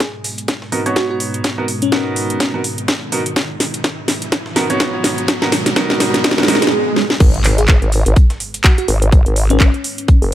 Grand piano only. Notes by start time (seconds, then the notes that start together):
0.72 B3 D#4 F#4 A#4
0.86 B3 D#4 F#4 C#5
1.58 B3 D#4 F#4 A#4
1.92 B3 D#4 F#4 A#4
2.54 B3 D#4 F#4 A#4
3.12 B3 D#4 F#4 A#4
4.56 B3 D#4 F#4 A#4
4.70 B3 D#4 F#4 C#5
5.42 B3 D#4 F#4 A#4
5.76 B3 D#4 F#4 A#4
6.38 B3 D#4 F#4 A#4
6.48 B3 D#4 F#4 A#4